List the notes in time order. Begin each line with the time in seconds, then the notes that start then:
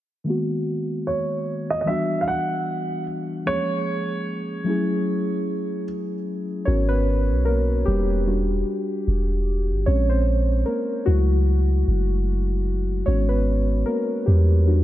0.24 D#3 G#3 A#3
0.28 B3 F#4
1.07 C#5
1.70 D#5
1.81 E3 D#5
1.86 G3 B3 D4 E5
1.90 F#4
2.21 F5
2.28 F#5
3.45 F3 G#3 A#3 C#4 G#4 C#5
4.64 F#3 A3 C#4
4.68 E4 G#4
6.65 G#1 B3 C#4 F#4 A#4 C#5
6.89 B3 B4
7.30 B1
7.45 A#3 A#4
7.85 E1 G3 G4
8.27 G3 D4 F#4
9.07 E1
9.70 G1
9.86 A#1 G#3 C4 C#4 C#5
10.09 C4 C5
10.66 A#3 A#4
11.06 C#2 F#3 G#3 A3 E4 F#4
11.87 F#1
13.06 G#1 G#3 B3 C#4 F#4 C#5
13.29 B3 B4
13.86 A#3 A#4
14.26 E2 G3 G4
14.66 G3 D4 F#4